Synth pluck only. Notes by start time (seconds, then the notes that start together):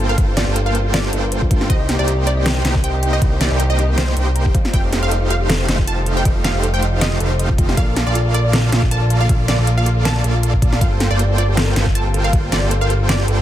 0.09 F5
0.37 D5
0.66 F5
0.94 D5
1.70 D#5
1.99 D5
2.27 D5
2.84 G5
3.13 D#5
3.41 D5
3.70 D#5
3.98 C5
4.73 G5
5.03 F5
5.30 F5
5.87 A5
6.17 G5
6.44 F5
6.74 G5
7.01 D#5
7.77 F5
8.07 D5
8.34 D5
8.91 A5
9.21 F5
9.48 D5
9.78 F5
10.05 A5
10.81 F5
11.11 D5
11.38 D5
11.95 A5
12.24 F5
12.52 D5
12.81 F5
13.09 D5